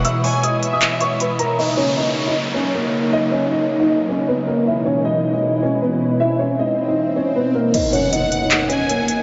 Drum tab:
CC |--------|--------|--------|--------|
HH |xoxxxxxx|--------|--------|--------|
CP |----x---|--------|--------|--------|

CC |--------|x-------|
HH |--------|xxxxxxxx|
CP |--------|----x---|